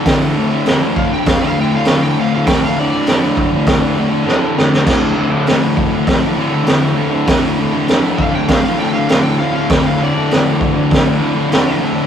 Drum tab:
CC |----------------|----------------|x---------------|----------------|
HH |o---o---o---o---|o---o---o-------|----o---o---o---|o---o---o---o---|
SD |o---o---o---o---|o---o---o---o-oo|o---o---o---o---|o---o---o---o---|
BD |o-----o-o-------|o-----o-o-------|o-----o-o-------|o-----o-o-------|

CC |----------------|
HH |o---o---o---o---|
SD |o---o---o---o---|
BD |o-----o-o-------|